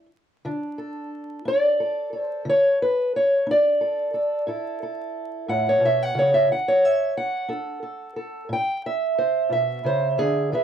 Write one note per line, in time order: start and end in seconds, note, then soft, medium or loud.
0.45 1.05 D3 medium
0.45 1.44 D4 soft
0.78 1.80 A4 soft
1.45 2.06 D4 medium
1.45 2.22 D5 loud
1.80 2.12 A4 soft
2.13 3.80 A4 soft
2.22 2.47 C5 loud
2.45 3.06 D3 medium
2.49 2.81 C#5 loud
2.82 3.15 B4 medium
3.16 3.48 C#5 medium
3.47 4.07 D4 medium
3.51 4.47 D5 loud
3.81 4.13 A4 medium
4.14 4.48 A4 soft
4.47 5.07 A2 medium
4.47 5.65 E4 soft
4.47 4.81 A4 soft
4.83 5.49 A4 soft
5.48 5.80 A2 medium
5.48 5.82 F#5 medium
5.69 6.17 C#5 medium
5.80 6.14 B2 medium
5.85 6.03 E5 medium
6.03 6.34 F#5 medium
6.15 6.48 C#3 medium
6.19 6.50 C#5 medium
6.34 6.50 E5 loud
6.49 7.09 D3 medium
6.49 6.85 F#5 medium
6.68 7.49 C#5 medium
6.85 7.17 E5 medium
7.17 8.51 F#5 medium
7.48 8.09 D4 medium
7.48 7.81 A4 soft
7.83 8.15 A4 soft
8.16 8.46 A4 soft
8.49 9.10 A2 medium
8.49 8.85 G5 loud
8.86 9.51 E5 medium
9.18 9.51 C5 medium
9.49 9.83 B2 medium
9.49 10.52 E5 medium
9.84 10.18 C#3 medium
9.84 10.19 C5 medium
10.18 10.51 D3 medium
10.18 10.52 G#4 loud
10.52 10.64 E3 medium
10.52 10.64 G#4 medium
10.52 10.64 B4 medium
10.52 10.64 E5 medium